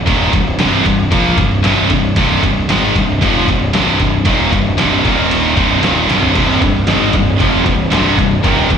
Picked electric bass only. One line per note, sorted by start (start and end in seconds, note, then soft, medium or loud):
0.08 0.32 D#1 loud
0.34 0.58 C1 medium
0.60 0.84 C1 loud
0.86 1.10 C1 medium
1.12 1.36 A#1 loud
1.38 1.62 C1 medium
1.64 1.89 C1 loud
1.91 2.15 C1 medium
2.17 2.41 C1 loud
2.43 2.67 C1 medium
2.69 2.93 G#1 loud
2.95 3.20 C1 medium
3.22 3.46 F1 loud
3.48 3.72 C1 medium
3.73 3.98 C1 loud
4.00 4.24 C1 medium
4.26 4.50 D#1 medium
4.52 4.76 C1 medium
4.79 5.03 C1 loud
5.05 5.53 D#1 loud
5.58 5.82 C1 medium
5.83 6.08 D#1 loud
6.09 6.33 C1 medium
6.36 6.60 C1 loud
6.62 6.86 C1 medium
6.88 7.12 G#1 loud
7.14 7.38 C1 medium
7.40 7.64 F1 medium
7.66 7.90 C1 medium
7.92 8.16 C1 loud
8.18 8.43 C1 medium
8.44 8.69 D#1 medium
8.70 8.78 C1 medium